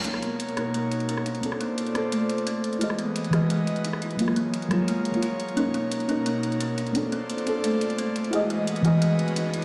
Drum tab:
HH |x-x-xxx-x-xxx-xx|x-x-xxx-x-xxx-xx|x-x-xxx-x-xxx-xx|x-x-xxx-x-xxx-xx|
SD |-r----r------r--|-r----r---------|-r----r------r--|-r----r---------|

HH |x-x-xxx-x-xxx-xx|x-x-xxx-x-xxx-xx|x-x-xxx-x-xxx-x-|
SD |----------------|----------------|----------------|